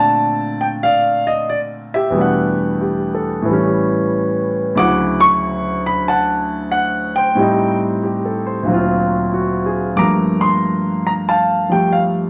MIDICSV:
0, 0, Header, 1, 2, 480
1, 0, Start_track
1, 0, Tempo, 652174
1, 1582, Time_signature, 4, 2, 24, 8
1, 9051, End_track
2, 0, Start_track
2, 0, Title_t, "Grand piano"
2, 0, Program_c, 0, 0
2, 0, Note_on_c, 0, 46, 48
2, 0, Note_on_c, 0, 50, 52
2, 0, Note_on_c, 0, 57, 40
2, 0, Note_on_c, 0, 60, 42
2, 0, Note_on_c, 0, 74, 67
2, 0, Note_on_c, 0, 81, 88
2, 448, Note_on_c, 0, 79, 72
2, 467, Note_off_c, 0, 81, 0
2, 485, Note_off_c, 0, 79, 0
2, 596, Note_off_c, 0, 74, 0
2, 613, Note_on_c, 0, 77, 80
2, 625, Note_on_c, 0, 74, 56
2, 934, Note_on_c, 0, 75, 69
2, 945, Note_off_c, 0, 77, 0
2, 1087, Note_off_c, 0, 75, 0
2, 1089, Note_off_c, 0, 74, 0
2, 1100, Note_on_c, 0, 74, 64
2, 1172, Note_off_c, 0, 74, 0
2, 1429, Note_on_c, 0, 76, 71
2, 1440, Note_on_c, 0, 67, 48
2, 1546, Note_on_c, 0, 40, 47
2, 1561, Note_on_c, 0, 47, 50
2, 1577, Note_on_c, 0, 55, 48
2, 1583, Note_off_c, 0, 46, 0
2, 1584, Note_off_c, 0, 57, 0
2, 1586, Note_off_c, 0, 60, 0
2, 1588, Note_off_c, 0, 50, 0
2, 1595, Note_on_c, 0, 57, 46
2, 1612, Note_on_c, 0, 62, 42
2, 1627, Note_on_c, 0, 78, 54
2, 1878, Note_off_c, 0, 76, 0
2, 2059, Note_off_c, 0, 67, 0
2, 2070, Note_on_c, 0, 67, 41
2, 2315, Note_on_c, 0, 69, 44
2, 2440, Note_off_c, 0, 67, 0
2, 2517, Note_on_c, 0, 45, 55
2, 2528, Note_off_c, 0, 40, 0
2, 2535, Note_off_c, 0, 47, 0
2, 2541, Note_on_c, 0, 52, 50
2, 2544, Note_off_c, 0, 55, 0
2, 2553, Note_off_c, 0, 57, 0
2, 2561, Note_off_c, 0, 62, 0
2, 2569, Note_off_c, 0, 78, 0
2, 2571, Note_on_c, 0, 55, 48
2, 2596, Note_on_c, 0, 61, 52
2, 2646, Note_off_c, 0, 69, 0
2, 3494, Note_off_c, 0, 45, 0
2, 3497, Note_on_c, 0, 38, 52
2, 3506, Note_off_c, 0, 52, 0
2, 3506, Note_on_c, 0, 49, 46
2, 3514, Note_on_c, 0, 86, 100
2, 3517, Note_on_c, 0, 54, 45
2, 3521, Note_off_c, 0, 55, 0
2, 3527, Note_on_c, 0, 78, 68
2, 3532, Note_on_c, 0, 64, 55
2, 3534, Note_off_c, 0, 61, 0
2, 3831, Note_on_c, 0, 85, 108
2, 3840, Note_off_c, 0, 86, 0
2, 4280, Note_off_c, 0, 85, 0
2, 4316, Note_on_c, 0, 83, 79
2, 4449, Note_off_c, 0, 78, 0
2, 4462, Note_off_c, 0, 83, 0
2, 4476, Note_on_c, 0, 81, 73
2, 4484, Note_on_c, 0, 78, 59
2, 4923, Note_off_c, 0, 81, 0
2, 4931, Note_off_c, 0, 78, 0
2, 4942, Note_on_c, 0, 78, 72
2, 5241, Note_off_c, 0, 78, 0
2, 5267, Note_on_c, 0, 79, 77
2, 5281, Note_on_c, 0, 72, 44
2, 5411, Note_on_c, 0, 45, 56
2, 5422, Note_off_c, 0, 38, 0
2, 5424, Note_on_c, 0, 55, 50
2, 5427, Note_off_c, 0, 49, 0
2, 5432, Note_off_c, 0, 54, 0
2, 5438, Note_on_c, 0, 60, 51
2, 5440, Note_off_c, 0, 64, 0
2, 5449, Note_on_c, 0, 63, 59
2, 5716, Note_off_c, 0, 79, 0
2, 5913, Note_on_c, 0, 67, 39
2, 6075, Note_on_c, 0, 69, 38
2, 6202, Note_off_c, 0, 72, 0
2, 6205, Note_off_c, 0, 67, 0
2, 6231, Note_on_c, 0, 72, 48
2, 6318, Note_off_c, 0, 69, 0
2, 6349, Note_on_c, 0, 38, 49
2, 6367, Note_on_c, 0, 46, 49
2, 6376, Note_off_c, 0, 45, 0
2, 6383, Note_off_c, 0, 55, 0
2, 6387, Note_on_c, 0, 54, 51
2, 6390, Note_off_c, 0, 60, 0
2, 6396, Note_off_c, 0, 63, 0
2, 6406, Note_on_c, 0, 60, 50
2, 6432, Note_on_c, 0, 65, 59
2, 6475, Note_off_c, 0, 72, 0
2, 6869, Note_on_c, 0, 66, 44
2, 7109, Note_on_c, 0, 68, 44
2, 7236, Note_off_c, 0, 66, 0
2, 7323, Note_off_c, 0, 38, 0
2, 7328, Note_on_c, 0, 43, 50
2, 7332, Note_off_c, 0, 46, 0
2, 7337, Note_on_c, 0, 86, 85
2, 7339, Note_on_c, 0, 53, 44
2, 7342, Note_off_c, 0, 54, 0
2, 7351, Note_on_c, 0, 82, 65
2, 7352, Note_off_c, 0, 60, 0
2, 7353, Note_on_c, 0, 57, 44
2, 7363, Note_on_c, 0, 58, 48
2, 7364, Note_off_c, 0, 65, 0
2, 7439, Note_off_c, 0, 68, 0
2, 7662, Note_on_c, 0, 84, 96
2, 7665, Note_off_c, 0, 86, 0
2, 8133, Note_off_c, 0, 82, 0
2, 8144, Note_on_c, 0, 82, 77
2, 8152, Note_off_c, 0, 84, 0
2, 8181, Note_off_c, 0, 82, 0
2, 8307, Note_on_c, 0, 81, 78
2, 8311, Note_on_c, 0, 77, 57
2, 8596, Note_off_c, 0, 53, 0
2, 8607, Note_on_c, 0, 53, 43
2, 8619, Note_off_c, 0, 57, 0
2, 8620, Note_on_c, 0, 55, 37
2, 8624, Note_on_c, 0, 79, 65
2, 8627, Note_off_c, 0, 81, 0
2, 8630, Note_on_c, 0, 57, 43
2, 8766, Note_off_c, 0, 77, 0
2, 8768, Note_off_c, 0, 79, 0
2, 8777, Note_on_c, 0, 77, 63
2, 8848, Note_off_c, 0, 77, 0
2, 9051, Note_off_c, 0, 43, 0
2, 9051, Note_off_c, 0, 53, 0
2, 9051, Note_off_c, 0, 55, 0
2, 9051, Note_off_c, 0, 57, 0
2, 9051, Note_off_c, 0, 58, 0
2, 9051, End_track
0, 0, End_of_file